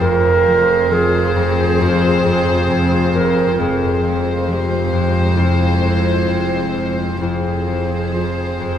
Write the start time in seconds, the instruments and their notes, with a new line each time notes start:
Already playing: harp F3, felt piano G6
0.01 double bass section F1, harp F2, cello section F2, viola section C4 G#4, clarinet A#4, violin section C5
0.47 harp F3
0.91 harp F3, clarinet G#4
1.36 harp F2
1.80 harp F2, clarinet F4
2.25 harp F2
2.70 harp F2
3.15 harp F2, clarinet A#4
3.59 double bass section F1, cello section F2, harp F2, viola section G#3 C4, clarinet G#4, violin section C5
4.03 harp F3
4.48 harp F3, clarinet G4
4.93 harp F2
5.36 harp F2, clarinet E4
5.83 harp F2
6.28 harp F2
6.74 harp F2
7.20 double bass section F1, harp F2, cello section F2, viola section C4 G#4, clarinet E4, violin section C5
7.67 harp F3
8.14 harp F3, clarinet F4
8.60 harp F2